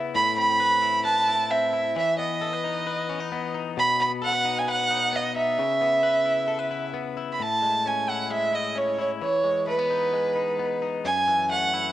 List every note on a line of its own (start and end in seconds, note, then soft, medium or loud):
0.00 0.15 C#3 medium
0.00 0.36 B3 medium
0.00 0.82 E4 medium
0.00 0.40 B4 medium
0.15 1.96 A2 medium
0.15 0.36 B5 loud
0.37 1.50 C4 medium
0.37 1.02 B5 loud
0.60 1.04 B4 medium
0.82 1.28 E4 medium
1.05 2.41 B4 medium
1.05 1.52 A5 loud
1.28 1.73 E4 medium
1.50 2.00 C4 medium
1.50 1.96 E5 medium
1.73 2.00 E4 medium
1.96 3.77 E3 medium
1.96 2.18 E5 loud
2.19 3.32 B3 medium
2.19 3.51 D#5 medium
2.41 2.53 A4 medium
2.53 2.85 B4 medium
2.64 3.09 D#4 medium
2.87 4.21 B4 medium
3.09 3.20 C#4 medium
3.20 3.53 D#4 medium
3.32 3.99 B3 medium
3.54 3.81 D#4 medium
3.77 5.58 B2 medium
3.77 3.99 B5 loud
4.00 5.12 B3 medium
4.00 4.11 B5 loud
4.22 4.33 A4 medium
4.22 4.60 F#5 loud
4.33 4.67 B4 medium
4.45 4.89 D#4 medium
4.58 4.69 G#5 loud
4.68 5.63 B4 medium
4.68 5.17 F#5 loud
4.91 5.35 D#4 medium
5.13 5.63 B3 medium
5.13 5.36 D#5 medium
5.36 5.63 D#4 medium
5.36 6.91 E5 loud
5.59 7.40 C#3 medium
5.81 6.92 B3 medium
6.03 6.47 B4 medium
6.26 6.70 E4 medium
6.48 6.59 A4 medium
6.59 7.44 B4 medium
6.71 7.17 E4 medium
6.94 7.44 B3 medium
7.17 8.07 E4 medium
7.33 7.44 B5 medium
7.40 9.22 A2 medium
7.40 7.89 A5 loud
7.62 8.30 G#3 medium
7.86 8.74 C#4 medium
7.86 8.11 G#5 medium
8.08 8.52 E4 medium
8.08 8.31 F#5 medium
8.30 9.26 G#3 medium
8.30 8.56 E5 medium
8.53 8.98 E4 medium
8.53 8.79 D#5 medium
8.75 9.26 C#4 medium
8.75 9.00 C#5 medium
8.99 9.90 E4 medium
8.99 9.10 C#5 medium
9.22 11.04 E3 medium
9.22 9.65 C#5 medium
9.44 10.12 G#3 medium
9.67 9.79 A3 medium
9.67 10.78 B4 medium
9.79 10.58 B3 medium
9.90 10.34 D#4 medium
10.13 11.09 G#3 medium
10.35 10.81 D#4 medium
10.59 11.09 B3 medium
10.82 11.09 D#4 medium
11.05 11.92 F#2 medium
11.05 11.47 G#5 loud
11.28 11.92 E3 medium
11.51 11.92 A3 medium
11.51 11.92 F#5 loud
11.73 11.92 E4 medium